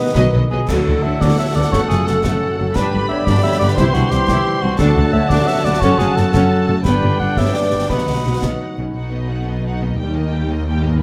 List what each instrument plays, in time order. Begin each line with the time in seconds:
Already playing: harp B2 B3 D#4 B4 D#5, trombone section D#3 B3, french horn section B3, flute section B4, trumpet section B4, clarinet B4, cor anglais D#5
0.00 harp F#4
0.13 cello section B2, viola section F#3, violin section B4 D#5, harp B4, concert bass drum, snare
0.17 double bass section B1
0.32 double bass section B1, cello section B2, viola section F#3, violin section B4, harp D#5
0.36 violin section D#5
0.50 double bass section B1, cello section B2, viola section F#3, flute section F4, cor anglais G#4, violin section B4 D#5, harp B4
0.67 double bass section D2, trombone section A2 A3, harp D3, cello section D3, viola section F#3, french horn section D4 F#4, flute section F#4, violin section A4, cor anglais A4, trumpet section A4, concert bass drum, snare, crash
0.72 violin section F#5
0.87 double bass section D2, cello section D3, viola section F#3, harp D4
1.02 double bass section D2, cello section D3, viola section D3, harp F#4, flute section C#5, cor anglais E5
1.21 double bass section D2, cello section D3, viola section F#3, harp A4, flute section A4, cor anglais D5, concert bass drum, snare
1.38 harp F#4, flute section C#5, cor anglais E5
1.55 double bass section D2, cello section D3, viola section D3, harp A3, flute section B4, cor anglais D5
1.72 double bass section F#1, cello section F#2, harp F#2, trombone section C#3, viola section A3, french horn section C#4, flute section A4, cor anglais C#5, concert bass drum, snare
1.88 double bass section F#1, cello section F#2, viola section A3, harp A3, flute section F4, cor anglais G#4, snare
2.06 double bass section F#1, cello section F#2, viola section F#3, harp C#4, flute section F#4, cor anglais A4, snare
2.23 double bass section F#1, cello section F#2, viola section A3, flute section F#4, harp F#4, cor anglais A4, concert bass drum, snare
2.43 harp C#4
2.58 double bass section F#1, cello section F#2, harp C#3, viola section F#3, flute section F#4, cor anglais A4
2.74 double bass section G1, cello section G2, harp G2, trombone section D3 G3, french horn section B3 G4, viola section D4, violin section G4 B5, flute section G4, cor anglais B4, trumpet section D5, concert bass drum, snare
2.93 double bass section G1, cello section G2, harp G3, viola section D4
3.09 double bass section G1, cello section G2, viola section B3, harp B3, flute section C#5, cor anglais E5
3.25 double bass section G1, cello section G2, harp D4, viola section D4, flute section B4, cor anglais D5, concert bass drum, snare
3.43 harp B3, flute section C#5, cor anglais E5
3.59 double bass section G1, cello section G2, harp D3, viola section B3, flute section B4, cor anglais D5
3.76 cello section C2, double bass section C2, harp C3, trombone section E3, french horn section C4 E4, viola section E4, flute section G4, cor anglais C5, trumpet section C5, violin section C6, concert bass drum, snare
3.93 cello section C2, double bass section C2, harp C4, flute section D4, viola section E4, cor anglais F#4, snare
4.10 cello section C2, double bass section C2, viola section C4, flute section E4, harp E4, cor anglais G4, snare
4.27 cello section C2, double bass section C2, flute section E4, viola section E4, cor anglais G4, harp G4, concert bass drum, snare
4.46 harp E4
4.62 double bass section C2, cello section C2, harp G3, viola section C4, flute section D4, cor anglais F#4
4.78 double bass section D2, cello section D2, harp D3, trombone section D3 F#3, french horn section A3 F#4, viola section D4, violin section F#4 A5, flute section F#4, cor anglais A4, trumpet section F#5, concert bass drum, snare, crash
4.97 double bass section D2, cello section D2, harp A3, viola section D4
5.13 cello section D2, double bass section D2, viola section A3, harp A4, flute section C#5, cor anglais E5
5.29 cello section D2, double bass section D2, viola section D4, harp F#4, cor anglais D5, concert bass drum, snare
5.33 flute section A4
5.47 harp A4, flute section C#5, cor anglais E5
5.64 cello section D2, double bass section D2, harp F#3, viola section A3, flute section B4, cor anglais D5
5.80 double bass section F#1, harp F#2, cello section F#2, trombone section C#3, french horn section C#4, viola section C#4, flute section A4, cor anglais C#5, concert bass drum, snare
5.98 double bass section F#1, cello section F#2, harp F#3, viola section C#4, flute section F4, cor anglais G#4, snare
6.15 double bass section F#1, cello section F#2, harp A3, viola section A3, flute section F#4, cor anglais A4, snare
6.33 double bass section F#1, cello section F#2, viola section C#4, flute section F#4, cor anglais A4, harp A4, concert bass drum, snare
6.51 harp A3
6.66 double bass section F#1, cello section F#2, harp C#3, viola section A3, flute section F#4, cor anglais A4
6.84 double bass section G1, harp G2, cello section G2, trombone section D3 G3, french horn section B3 B4, viola section B3, violin section D4 G5, flute section G4, cor anglais B4, trumpet section D5, concert bass drum, snare
7.03 double bass section G1, cello section G2, harp B3, viola section B3
7.19 double bass section G1, cello section G2, viola section G3, harp D4, flute section D5, cor anglais F#5
7.37 double bass section G1, cello section G2, viola section B3, harp G4, flute section C#5, cor anglais E5, concert bass drum, snare
7.54 harp D4, flute section B4, cor anglais D5
7.72 double bass section G1, cello section G2, harp D3, viola section G3
7.89 double bass section B1, trombone section B2 F#3, cello section B2, harp B2, viola section B3, violin section D#4 F#5, flute section F#4, cor anglais B4, trumpet section D#5, concert bass drum, snare
8.07 double bass section B1, cello section B2, viola section B3, harp B3
8.25 double bass section B1, cello section B2, viola section F#3, harp D#4
8.42 double bass section B1, cello section B2, viola section B3, violin section F4, harp F#4, concert bass drum, snare
8.61 violin section D#4, harp D#4
8.77 double bass section B1, harp B2 F#3, cello section B2, viola section F#3, violin section C#4
8.82 harp B3
8.86 harp D#4
8.91 double bass section B1, harp F#4, violin section F#5
8.96 cello section B2, viola section D#4, violin section F#4
9.12 viola section B3, violin section D#4 D#5
9.30 viola section D#4, violin section F#4 F#5
9.47 viola section B3, violin section D#4 D#5
9.63 viola section D#4, violin section F#4
9.67 violin section F#5
9.81 harp D#3, viola section B3, violin section D#4 D#5
9.86 harp A#3
9.90 harp D#4
9.95 double bass section D#2, viola section G3, harp G4, violin section G5
9.99 cello section D#2, violin section G4
10.15 viola section A#3, violin section A#4 D#5
10.32 viola section G3, violin section G4 G5
10.51 viola section A#3, violin section A#4 D#5
10.67 viola section G3, violin section G4 G5
10.83 harp G#2, viola section A#3, violin section A#4 D#5
10.88 harp B3
10.92 harp D#4
10.97 harp G#4